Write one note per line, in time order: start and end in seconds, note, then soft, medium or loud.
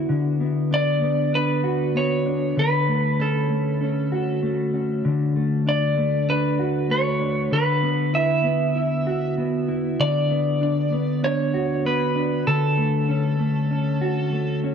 0.00 0.40 B3 medium
0.00 0.16 E4 medium
0.00 1.63 F#4 medium
0.09 2.56 D3 medium
0.40 1.00 B3 medium
0.71 1.32 D4 medium
0.71 1.36 D5 loud
1.02 1.94 B3 medium
1.33 2.25 D4 medium
1.33 1.98 B4 loud
1.64 4.12 F#4 medium
1.95 2.63 B3 medium
1.95 2.59 C#5 medium
2.26 2.63 D4 medium
2.57 5.04 D3 medium
2.57 3.22 B4 loud
2.88 3.50 A3 medium
3.19 3.80 C#4 medium
3.19 4.40 A4 medium
3.50 4.42 A3 medium
3.81 4.72 C#4 medium
4.12 6.59 F#4 medium
4.43 5.35 A3 medium
4.74 5.11 C#4 medium
5.05 7.50 D3 medium
5.36 5.97 A3 medium
5.66 6.27 D4 medium
5.66 6.31 D5 medium
5.98 6.89 A3 medium
6.29 7.19 D4 medium
6.29 6.93 B4 medium
6.59 8.16 F#4 medium
6.90 7.58 A3 medium
6.90 7.53 C#5 medium
7.21 7.58 D4 medium
7.52 9.99 D3 medium
7.52 8.16 B4 medium
7.83 8.44 B3 medium
8.13 8.74 E4 medium
8.13 9.34 E5 medium
8.44 9.37 B3 medium
8.75 9.67 E4 medium
9.07 11.54 F#4 medium
9.38 10.30 B3 medium
9.68 10.06 E4 medium
9.99 12.46 D3 medium
9.99 11.24 D5 loud
10.30 10.91 B3 medium
10.61 11.22 D4 medium
10.92 11.84 B3 medium
11.23 12.14 D4 medium
11.23 11.86 C#5 loud
11.54 14.01 F#4 medium
11.85 12.53 B3 medium
11.85 12.47 B4 medium
12.16 12.53 D4 medium
12.47 14.75 D3 medium
12.47 14.60 A4 medium
12.78 13.39 A3 medium
13.08 13.69 C#4 medium
13.39 14.32 A3 medium
13.71 14.62 C#4 medium
14.01 14.75 F#4 medium
14.33 14.75 A3 medium
14.64 14.75 C#4 medium